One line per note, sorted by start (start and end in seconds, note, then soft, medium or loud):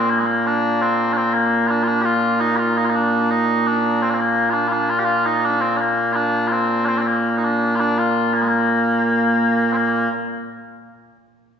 0.00 10.09 A#2 medium
0.00 0.10 A#3 medium
0.10 0.19 A#3 medium
0.19 0.26 G#3 medium
0.26 0.46 A#3 medium
0.46 0.82 D4 loud
0.82 1.13 C4 medium
1.13 1.17 D4 loud
1.17 1.33 C4 loud
1.33 1.67 A#3 medium
1.67 1.83 D4 medium
1.67 1.70 F4 medium
1.83 1.87 F4 loud
1.87 2.01 D4 loud
2.01 2.40 F4 loud
2.01 2.05 G4 loud
2.40 2.56 D#4 loud
2.56 2.77 F4 loud
2.56 2.59 G4 medium
2.77 2.85 D#4 medium
2.85 2.89 F4 medium
2.89 2.95 D#4 medium
2.95 3.30 D4 medium
3.30 3.66 D#4 loud
3.66 4.02 D4 medium
4.02 4.10 C4 loud
4.10 4.14 D4 medium
4.14 4.20 C4 medium
4.20 4.50 A#3 medium
4.50 4.68 D4 medium
4.50 4.53 F4 medium
4.68 4.72 F4 medium
4.72 4.90 D4 medium
4.90 4.99 F4 loud
4.99 5.05 G4 medium
5.05 5.26 F4 loud
5.26 5.45 D#4 medium
5.45 5.61 D4 loud
5.61 5.76 C4 medium
5.76 5.81 D4 medium
5.81 6.12 A#3 medium
6.12 6.48 D4 medium
6.12 6.16 F4 medium
6.48 6.52 F4 medium
6.52 6.85 C4 medium
6.85 6.98 C4 loud
6.85 6.88 D4 loud
6.98 7.07 C4 medium
6.98 7.01 D4 medium
7.07 7.37 A#3 medium
7.37 7.44 D#4 medium
7.44 7.75 D4 medium
7.75 7.80 F4 loud
7.80 7.98 D4 loud
7.98 8.34 F4 medium
8.34 8.42 A#3 medium
8.42 8.48 G#3 medium
8.48 9.72 A#3 medium
9.72 10.09 A#3 medium
9.72 9.76 C4 medium